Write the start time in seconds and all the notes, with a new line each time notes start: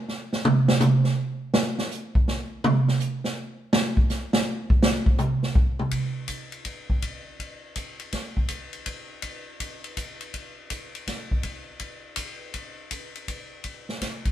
0.09 snare
0.33 snare
0.45 mid tom
0.68 snare
0.80 hi-hat pedal, mid tom
1.04 snare
1.54 snare
1.78 snare
1.91 hi-hat pedal
2.15 kick
2.28 snare
2.64 mid tom
2.88 snare
3.00 hi-hat pedal
3.24 snare
3.73 snare
3.97 kick
4.10 snare, hi-hat pedal
4.33 snare
4.70 kick
4.83 snare
5.06 kick
5.18 hi-hat pedal, mid tom
5.43 snare
5.55 kick
5.79 mid tom
5.91 kick, ride
6.28 kick, hi-hat pedal, ride
6.52 ride
6.65 kick, ride
6.90 kick
7.02 kick, ride
7.40 kick, ride
7.76 kick, hi-hat pedal, ride
8.00 ride
8.13 kick, snare, ride
8.37 kick
8.48 kick, hi-hat pedal, ride
8.73 ride
8.86 kick, ride
9.22 kick, ride
9.60 kick, hi-hat pedal, ride
9.84 ride
9.97 kick, hi-hat pedal, ride
10.21 ride
10.34 kick, ride
10.70 kick, hi-hat pedal, ride
10.95 ride
11.07 kick, snare, ride
11.31 kick
11.43 kick, ride
11.79 kick, ride
12.16 kick, hi-hat pedal, ride
12.54 kick, ride
12.91 kick, hi-hat pedal, ride
13.15 ride
13.28 kick, ride
13.64 kick, ride
13.89 snare
14.01 kick, snare, hi-hat pedal, ride
14.25 kick, ride